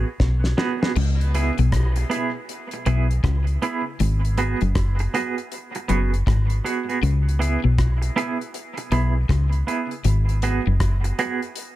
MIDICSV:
0, 0, Header, 1, 6, 480
1, 0, Start_track
1, 0, Key_signature, 4, "minor"
1, 0, Tempo, 757576
1, 611, Time_signature, 4, 2, 24, 8
1, 7450, End_track
2, 0, Start_track
2, 0, Title_t, "Clean electric guitar"
2, 0, Program_c, 0, 27
2, 364, Note_on_c, 0, 59, 93
2, 369, Note_on_c, 0, 66, 84
2, 373, Note_on_c, 0, 68, 95
2, 501, Note_off_c, 0, 59, 0
2, 504, Note_off_c, 0, 66, 0
2, 505, Note_off_c, 0, 68, 0
2, 516, Note_on_c, 0, 68, 66
2, 518, Note_on_c, 0, 66, 59
2, 520, Note_on_c, 0, 59, 61
2, 580, Note_off_c, 0, 68, 0
2, 581, Note_off_c, 0, 66, 0
2, 582, Note_off_c, 0, 59, 0
2, 852, Note_on_c, 0, 59, 76
2, 856, Note_on_c, 0, 64, 77
2, 857, Note_on_c, 0, 68, 76
2, 986, Note_off_c, 0, 59, 0
2, 988, Note_off_c, 0, 64, 0
2, 988, Note_off_c, 0, 68, 0
2, 1329, Note_on_c, 0, 59, 89
2, 1335, Note_on_c, 0, 64, 92
2, 1337, Note_on_c, 0, 68, 100
2, 1464, Note_off_c, 0, 59, 0
2, 1468, Note_off_c, 0, 64, 0
2, 1468, Note_off_c, 0, 68, 0
2, 1814, Note_on_c, 0, 59, 83
2, 1818, Note_on_c, 0, 64, 89
2, 1820, Note_on_c, 0, 68, 85
2, 1947, Note_off_c, 0, 59, 0
2, 1949, Note_off_c, 0, 64, 0
2, 1950, Note_off_c, 0, 68, 0
2, 2294, Note_on_c, 0, 59, 94
2, 2301, Note_on_c, 0, 64, 110
2, 2301, Note_on_c, 0, 68, 94
2, 2427, Note_off_c, 0, 59, 0
2, 2430, Note_off_c, 0, 64, 0
2, 2430, Note_off_c, 0, 68, 0
2, 2774, Note_on_c, 0, 59, 77
2, 2778, Note_on_c, 0, 66, 78
2, 2781, Note_on_c, 0, 68, 84
2, 2907, Note_off_c, 0, 59, 0
2, 2909, Note_off_c, 0, 66, 0
2, 2911, Note_off_c, 0, 68, 0
2, 3256, Note_on_c, 0, 59, 83
2, 3261, Note_on_c, 0, 66, 101
2, 3261, Note_on_c, 0, 68, 96
2, 3388, Note_off_c, 0, 59, 0
2, 3390, Note_off_c, 0, 66, 0
2, 3390, Note_off_c, 0, 68, 0
2, 3728, Note_on_c, 0, 59, 71
2, 3732, Note_on_c, 0, 66, 86
2, 3736, Note_on_c, 0, 68, 78
2, 3863, Note_off_c, 0, 59, 0
2, 3866, Note_off_c, 0, 66, 0
2, 3868, Note_off_c, 0, 68, 0
2, 4210, Note_on_c, 0, 59, 84
2, 4215, Note_on_c, 0, 66, 103
2, 4215, Note_on_c, 0, 68, 101
2, 4344, Note_off_c, 0, 59, 0
2, 4346, Note_off_c, 0, 66, 0
2, 4347, Note_off_c, 0, 68, 0
2, 4364, Note_on_c, 0, 68, 66
2, 4367, Note_on_c, 0, 66, 66
2, 4368, Note_on_c, 0, 59, 62
2, 4424, Note_off_c, 0, 68, 0
2, 4426, Note_off_c, 0, 59, 0
2, 4426, Note_off_c, 0, 66, 0
2, 4684, Note_on_c, 0, 59, 72
2, 4689, Note_on_c, 0, 64, 71
2, 4691, Note_on_c, 0, 68, 75
2, 4821, Note_off_c, 0, 59, 0
2, 4823, Note_off_c, 0, 64, 0
2, 4824, Note_off_c, 0, 68, 0
2, 5171, Note_on_c, 0, 59, 104
2, 5174, Note_on_c, 0, 64, 105
2, 5179, Note_on_c, 0, 68, 107
2, 5304, Note_off_c, 0, 59, 0
2, 5306, Note_off_c, 0, 64, 0
2, 5308, Note_off_c, 0, 68, 0
2, 5650, Note_on_c, 0, 59, 71
2, 5652, Note_on_c, 0, 64, 89
2, 5655, Note_on_c, 0, 68, 75
2, 5783, Note_off_c, 0, 59, 0
2, 5784, Note_off_c, 0, 64, 0
2, 5785, Note_off_c, 0, 68, 0
2, 6127, Note_on_c, 0, 59, 85
2, 6132, Note_on_c, 0, 64, 91
2, 6133, Note_on_c, 0, 68, 96
2, 6261, Note_off_c, 0, 59, 0
2, 6264, Note_off_c, 0, 64, 0
2, 6264, Note_off_c, 0, 68, 0
2, 6608, Note_on_c, 0, 59, 93
2, 6611, Note_on_c, 0, 66, 92
2, 6612, Note_on_c, 0, 68, 90
2, 6742, Note_off_c, 0, 59, 0
2, 6743, Note_off_c, 0, 66, 0
2, 6743, Note_off_c, 0, 68, 0
2, 7089, Note_on_c, 0, 59, 89
2, 7090, Note_on_c, 0, 66, 94
2, 7093, Note_on_c, 0, 68, 107
2, 7221, Note_off_c, 0, 59, 0
2, 7222, Note_off_c, 0, 66, 0
2, 7224, Note_off_c, 0, 68, 0
2, 7450, End_track
3, 0, Start_track
3, 0, Title_t, "Clean electric guitar"
3, 0, Program_c, 1, 27
3, 613, Note_on_c, 1, 49, 95
3, 756, Note_off_c, 1, 49, 0
3, 1007, Note_on_c, 1, 47, 63
3, 1150, Note_off_c, 1, 47, 0
3, 1818, Note_on_c, 1, 47, 73
3, 1960, Note_off_c, 1, 47, 0
3, 2054, Note_on_c, 1, 49, 81
3, 2197, Note_off_c, 1, 49, 0
3, 2535, Note_on_c, 1, 44, 91
3, 2678, Note_off_c, 1, 44, 0
3, 2926, Note_on_c, 1, 42, 75
3, 3069, Note_off_c, 1, 42, 0
3, 3736, Note_on_c, 1, 42, 72
3, 3878, Note_off_c, 1, 42, 0
3, 3975, Note_on_c, 1, 44, 81
3, 4117, Note_off_c, 1, 44, 0
3, 4452, Note_on_c, 1, 49, 97
3, 4595, Note_off_c, 1, 49, 0
3, 4841, Note_on_c, 1, 47, 73
3, 4985, Note_off_c, 1, 47, 0
3, 5652, Note_on_c, 1, 47, 71
3, 5795, Note_off_c, 1, 47, 0
3, 5890, Note_on_c, 1, 49, 75
3, 6033, Note_off_c, 1, 49, 0
3, 6366, Note_on_c, 1, 44, 83
3, 6511, Note_off_c, 1, 44, 0
3, 6762, Note_on_c, 1, 42, 70
3, 6905, Note_off_c, 1, 42, 0
3, 7450, End_track
4, 0, Start_track
4, 0, Title_t, "Fingered electric bass"
4, 0, Program_c, 2, 33
4, 129, Note_on_c, 2, 35, 81
4, 337, Note_off_c, 2, 35, 0
4, 610, Note_on_c, 2, 37, 108
4, 951, Note_off_c, 2, 37, 0
4, 1007, Note_on_c, 2, 35, 83
4, 1290, Note_off_c, 2, 35, 0
4, 1817, Note_on_c, 2, 35, 96
4, 2023, Note_off_c, 2, 35, 0
4, 2052, Note_on_c, 2, 37, 84
4, 2260, Note_off_c, 2, 37, 0
4, 2537, Note_on_c, 2, 32, 115
4, 2875, Note_off_c, 2, 32, 0
4, 2927, Note_on_c, 2, 30, 92
4, 3210, Note_off_c, 2, 30, 0
4, 3737, Note_on_c, 2, 30, 101
4, 3942, Note_off_c, 2, 30, 0
4, 3973, Note_on_c, 2, 32, 86
4, 4180, Note_off_c, 2, 32, 0
4, 4453, Note_on_c, 2, 37, 116
4, 4791, Note_off_c, 2, 37, 0
4, 4845, Note_on_c, 2, 35, 74
4, 5127, Note_off_c, 2, 35, 0
4, 5651, Note_on_c, 2, 35, 101
4, 5858, Note_off_c, 2, 35, 0
4, 5890, Note_on_c, 2, 37, 81
4, 6097, Note_off_c, 2, 37, 0
4, 6366, Note_on_c, 2, 32, 106
4, 6706, Note_off_c, 2, 32, 0
4, 6759, Note_on_c, 2, 30, 83
4, 7043, Note_off_c, 2, 30, 0
4, 7450, End_track
5, 0, Start_track
5, 0, Title_t, "Muted clean electric guitar strokes"
5, 1244, Note_on_c, 9, 29, 48
5, 1307, Note_off_c, 9, 29, 0
5, 1733, Note_on_c, 9, 29, 49
5, 1796, Note_off_c, 9, 29, 0
5, 3169, Note_on_c, 9, 29, 47
5, 3233, Note_off_c, 9, 29, 0
5, 3648, Note_on_c, 9, 29, 51
5, 3711, Note_off_c, 9, 29, 0
5, 5079, Note_on_c, 9, 29, 49
5, 5143, Note_off_c, 9, 29, 0
5, 5561, Note_on_c, 9, 29, 40
5, 5625, Note_off_c, 9, 29, 0
5, 6996, Note_on_c, 9, 29, 52
5, 7059, Note_off_c, 9, 29, 0
5, 7450, End_track
6, 0, Start_track
6, 0, Title_t, "Drums"
6, 126, Note_on_c, 9, 38, 61
6, 127, Note_on_c, 9, 36, 106
6, 189, Note_off_c, 9, 38, 0
6, 190, Note_off_c, 9, 36, 0
6, 278, Note_on_c, 9, 38, 58
6, 342, Note_off_c, 9, 38, 0
6, 367, Note_on_c, 9, 38, 87
6, 431, Note_off_c, 9, 38, 0
6, 524, Note_on_c, 9, 38, 82
6, 587, Note_off_c, 9, 38, 0
6, 608, Note_on_c, 9, 55, 84
6, 672, Note_off_c, 9, 55, 0
6, 767, Note_on_c, 9, 42, 43
6, 830, Note_off_c, 9, 42, 0
6, 852, Note_on_c, 9, 42, 85
6, 916, Note_off_c, 9, 42, 0
6, 1000, Note_on_c, 9, 42, 39
6, 1063, Note_off_c, 9, 42, 0
6, 1091, Note_on_c, 9, 42, 73
6, 1092, Note_on_c, 9, 36, 98
6, 1092, Note_on_c, 9, 37, 95
6, 1155, Note_off_c, 9, 36, 0
6, 1155, Note_off_c, 9, 37, 0
6, 1155, Note_off_c, 9, 42, 0
6, 1240, Note_on_c, 9, 42, 53
6, 1303, Note_off_c, 9, 42, 0
6, 1338, Note_on_c, 9, 42, 77
6, 1401, Note_off_c, 9, 42, 0
6, 1578, Note_on_c, 9, 42, 77
6, 1641, Note_off_c, 9, 42, 0
6, 1719, Note_on_c, 9, 42, 51
6, 1782, Note_off_c, 9, 42, 0
6, 1812, Note_on_c, 9, 42, 75
6, 1876, Note_off_c, 9, 42, 0
6, 1968, Note_on_c, 9, 42, 41
6, 2032, Note_off_c, 9, 42, 0
6, 2051, Note_on_c, 9, 36, 107
6, 2054, Note_on_c, 9, 42, 73
6, 2055, Note_on_c, 9, 37, 117
6, 2115, Note_off_c, 9, 36, 0
6, 2117, Note_off_c, 9, 42, 0
6, 2119, Note_off_c, 9, 37, 0
6, 2199, Note_on_c, 9, 42, 39
6, 2262, Note_off_c, 9, 42, 0
6, 2296, Note_on_c, 9, 42, 66
6, 2359, Note_off_c, 9, 42, 0
6, 2533, Note_on_c, 9, 42, 91
6, 2596, Note_off_c, 9, 42, 0
6, 2691, Note_on_c, 9, 42, 42
6, 2754, Note_off_c, 9, 42, 0
6, 2772, Note_on_c, 9, 42, 79
6, 2835, Note_off_c, 9, 42, 0
6, 2919, Note_on_c, 9, 42, 35
6, 2983, Note_off_c, 9, 42, 0
6, 3011, Note_on_c, 9, 42, 76
6, 3012, Note_on_c, 9, 37, 97
6, 3014, Note_on_c, 9, 36, 108
6, 3075, Note_off_c, 9, 42, 0
6, 3076, Note_off_c, 9, 37, 0
6, 3077, Note_off_c, 9, 36, 0
6, 3162, Note_on_c, 9, 42, 48
6, 3225, Note_off_c, 9, 42, 0
6, 3260, Note_on_c, 9, 42, 81
6, 3323, Note_off_c, 9, 42, 0
6, 3408, Note_on_c, 9, 42, 31
6, 3472, Note_off_c, 9, 42, 0
6, 3495, Note_on_c, 9, 42, 81
6, 3559, Note_off_c, 9, 42, 0
6, 3642, Note_on_c, 9, 42, 55
6, 3706, Note_off_c, 9, 42, 0
6, 3732, Note_on_c, 9, 42, 63
6, 3795, Note_off_c, 9, 42, 0
6, 3888, Note_on_c, 9, 42, 41
6, 3952, Note_off_c, 9, 42, 0
6, 3972, Note_on_c, 9, 36, 112
6, 3978, Note_on_c, 9, 42, 88
6, 3980, Note_on_c, 9, 37, 112
6, 4036, Note_off_c, 9, 36, 0
6, 4041, Note_off_c, 9, 42, 0
6, 4043, Note_off_c, 9, 37, 0
6, 4117, Note_on_c, 9, 42, 42
6, 4180, Note_off_c, 9, 42, 0
6, 4220, Note_on_c, 9, 42, 68
6, 4283, Note_off_c, 9, 42, 0
6, 4368, Note_on_c, 9, 42, 33
6, 4431, Note_off_c, 9, 42, 0
6, 4455, Note_on_c, 9, 42, 84
6, 4519, Note_off_c, 9, 42, 0
6, 4616, Note_on_c, 9, 42, 42
6, 4680, Note_off_c, 9, 42, 0
6, 4699, Note_on_c, 9, 42, 91
6, 4762, Note_off_c, 9, 42, 0
6, 4932, Note_on_c, 9, 42, 77
6, 4933, Note_on_c, 9, 36, 98
6, 4933, Note_on_c, 9, 37, 112
6, 4995, Note_off_c, 9, 42, 0
6, 4996, Note_off_c, 9, 36, 0
6, 4996, Note_off_c, 9, 37, 0
6, 5084, Note_on_c, 9, 42, 56
6, 5147, Note_off_c, 9, 42, 0
6, 5181, Note_on_c, 9, 42, 75
6, 5244, Note_off_c, 9, 42, 0
6, 5330, Note_on_c, 9, 42, 33
6, 5394, Note_off_c, 9, 42, 0
6, 5412, Note_on_c, 9, 42, 73
6, 5476, Note_off_c, 9, 42, 0
6, 5559, Note_on_c, 9, 42, 56
6, 5623, Note_off_c, 9, 42, 0
6, 5649, Note_on_c, 9, 42, 71
6, 5713, Note_off_c, 9, 42, 0
6, 5888, Note_on_c, 9, 36, 112
6, 5894, Note_on_c, 9, 42, 88
6, 5895, Note_on_c, 9, 37, 118
6, 5951, Note_off_c, 9, 36, 0
6, 5957, Note_off_c, 9, 42, 0
6, 5958, Note_off_c, 9, 37, 0
6, 6035, Note_on_c, 9, 42, 44
6, 6098, Note_off_c, 9, 42, 0
6, 6134, Note_on_c, 9, 42, 66
6, 6197, Note_off_c, 9, 42, 0
6, 6280, Note_on_c, 9, 42, 33
6, 6343, Note_off_c, 9, 42, 0
6, 6364, Note_on_c, 9, 42, 101
6, 6427, Note_off_c, 9, 42, 0
6, 6518, Note_on_c, 9, 42, 39
6, 6582, Note_off_c, 9, 42, 0
6, 6603, Note_on_c, 9, 42, 83
6, 6666, Note_off_c, 9, 42, 0
6, 6844, Note_on_c, 9, 42, 80
6, 6845, Note_on_c, 9, 36, 93
6, 6845, Note_on_c, 9, 37, 98
6, 6907, Note_off_c, 9, 42, 0
6, 6908, Note_off_c, 9, 37, 0
6, 6909, Note_off_c, 9, 36, 0
6, 6997, Note_on_c, 9, 42, 52
6, 7060, Note_off_c, 9, 42, 0
6, 7088, Note_on_c, 9, 42, 69
6, 7151, Note_off_c, 9, 42, 0
6, 7239, Note_on_c, 9, 42, 31
6, 7302, Note_off_c, 9, 42, 0
6, 7321, Note_on_c, 9, 42, 83
6, 7385, Note_off_c, 9, 42, 0
6, 7450, End_track
0, 0, End_of_file